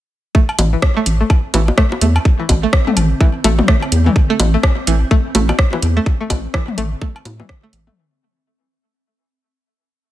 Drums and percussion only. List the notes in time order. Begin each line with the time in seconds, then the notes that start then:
0.35 kick
0.49 cowbell
0.59 open hi-hat, low bongo
0.82 kick, cross-stick
1.06 open hi-hat
1.30 kick, cowbell
1.54 open hi-hat, low bongo
1.68 low bongo
1.78 kick, cross-stick
1.92 low bongo
2.01 open hi-hat
2.16 cowbell
2.25 kick
2.49 kick, open hi-hat, low bongo
2.73 kick, cross-stick
2.87 mid tom
2.97 open hi-hat, cowbell
3.21 kick
3.44 open hi-hat, low bongo
3.59 mid tom, low bongo
3.68 kick, cross-stick
3.82 cowbell
3.92 open hi-hat
4.06 mid tom
4.16 kick
4.40 open hi-hat, low bongo
4.63 kick, cross-stick, cowbell
4.87 open hi-hat
5.11 kick
5.35 open hi-hat, low bongo
5.49 cowbell, low bongo
5.59 kick, cross-stick
5.73 low bongo
5.82 open hi-hat
6.06 kick
6.30 kick, open hi-hat, cowbell, low bongo
6.54 kick, cross-stick
6.68 mid tom
6.78 open hi-hat
7.02 kick
7.16 cowbell
7.25 open hi-hat, low bongo
7.40 mid tom, low bongo
7.49 kick, cross-stick
7.73 open hi-hat
7.87 mid tom